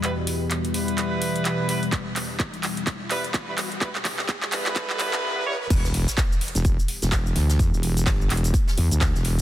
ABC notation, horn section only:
X:1
M:4/4
L:1/16
Q:"Swing 16ths" 1/4=127
K:Em
V:1 name="Horn section"
[G,B,EB] z4 z [G,B,EB]8 [G,B,EB] z | z8 z2 [G,B,EB] z2 [G,B,EB] z2 | [G,B,EB] z4 z [G,B,EB]8 [G,B,E^c] z | z16 |
z16 |]